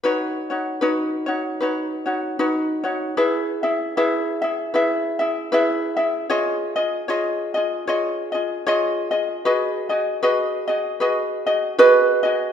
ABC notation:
X:1
M:4/4
L:1/8
Q:"Swing" 1/4=77
K:B
V:1 name="Ukulele"
z8 | z8 | z8 | z6 B2 |]
V:2 name="Ukulele"
[DFBc] [DFc] [DFBc] [DFc] [DFBc] [DFc] [DFBc] [DFc] | [EGBe] [EGe] [EGBe] [EGe] [EGBe] [EGe] [EGBe] [EGe] | [^EGcd] [EGd] [EGcd] [EGd] [EGcd] [EGd] [EGcd] [EGd] | [FGBd] [FGd] [FGBd] [FGd] [FGBd] [FGd] [FGBd] [FGd] |]